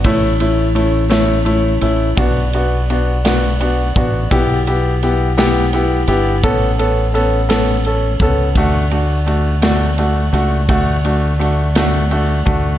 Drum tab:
RD |xxxxxx|xxxxxx|xxxxxx|xxxxxx|
SD |---o--|---o--|---o--|---o--|
BD |o-----|o----o|o-----|o----o|

RD |xxxxxx|xxxxxx|
SD |---o--|---o--|
BD |o-----|o----o|